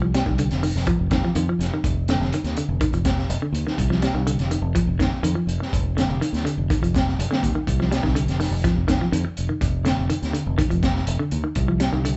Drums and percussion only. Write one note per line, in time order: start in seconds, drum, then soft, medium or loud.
0.14 snare medium
0.14 closed hi-hat medium
0.26 kick medium
0.38 closed hi-hat medium
0.51 snare soft
0.51 closed hi-hat soft
0.63 open hi-hat medium
0.76 snare soft
0.87 kick medium
0.87 closed hi-hat medium
1.11 kick medium
1.11 snare medium
1.11 closed hi-hat soft
1.35 closed hi-hat medium
1.61 snare soft
1.61 closed hi-hat soft
1.84 kick medium
1.84 closed hi-hat medium
2.08 snare medium
2.08 closed hi-hat medium
2.21 snare soft
2.32 closed hi-hat medium
2.44 snare soft
2.44 closed hi-hat soft
2.56 closed hi-hat medium
2.81 kick loud
2.81 closed hi-hat medium
2.93 closed hi-hat soft
3.05 kick medium
3.05 snare medium
3.05 closed hi-hat medium
3.18 snare soft
3.30 closed hi-hat medium
3.55 closed hi-hat medium
3.67 snare soft
3.78 kick medium
3.78 closed hi-hat medium
3.91 snare soft
4.02 snare medium
4.02 closed hi-hat medium
4.27 closed hi-hat medium
4.39 snare soft
4.39 closed hi-hat soft
4.51 closed hi-hat medium
4.75 kick medium
4.75 closed hi-hat medium
5.00 kick medium
5.00 snare medium
5.00 closed hi-hat soft
5.24 closed hi-hat medium
5.49 closed hi-hat soft
5.62 snare soft
5.73 kick medium
5.73 closed hi-hat medium
5.98 snare medium
5.98 closed hi-hat soft
6.22 closed hi-hat medium
6.34 snare soft
6.34 closed hi-hat soft
6.47 closed hi-hat medium
6.70 kick medium
6.70 closed hi-hat medium
6.84 closed hi-hat soft
6.95 kick medium
6.95 snare medium
6.95 closed hi-hat medium
7.08 snare soft
7.20 closed hi-hat medium
7.32 snare medium
7.43 kick medium
7.43 closed hi-hat medium
7.67 kick medium
7.67 closed hi-hat medium
7.81 snare soft
7.92 snare medium
7.92 closed hi-hat medium
8.04 kick medium
8.04 snare soft
8.16 closed hi-hat medium
8.28 snare soft
8.28 closed hi-hat soft
8.40 snare soft
8.40 open hi-hat medium
8.64 kick loud
8.64 snare soft
8.64 closed hi-hat medium
8.88 kick medium
8.88 snare medium
8.88 closed hi-hat medium
9.13 closed hi-hat medium
9.37 closed hi-hat soft
9.61 kick medium
9.61 closed hi-hat medium
9.85 snare medium
9.85 closed hi-hat soft
10.10 closed hi-hat medium
10.23 snare soft
10.23 closed hi-hat soft
10.34 closed hi-hat medium
10.59 kick loud
10.59 closed hi-hat medium
10.71 closed hi-hat soft
10.83 kick medium
10.83 snare medium
10.83 closed hi-hat soft
10.96 snare soft
11.07 closed hi-hat medium
11.31 closed hi-hat medium
11.55 kick medium
11.55 closed hi-hat medium
11.80 snare medium
11.80 closed hi-hat medium
12.05 closed hi-hat medium